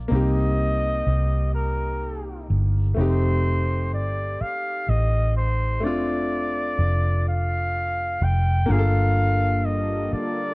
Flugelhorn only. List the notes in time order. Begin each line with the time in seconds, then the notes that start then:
0.11 D#5
1.54 A#4
2.99 C5
3.94 D5
4.41 F5
4.89 D#5
5.37 C5
5.84 D5
7.29 F5
8.24 G5
8.71 F5
9.66 D#5
10.14 D5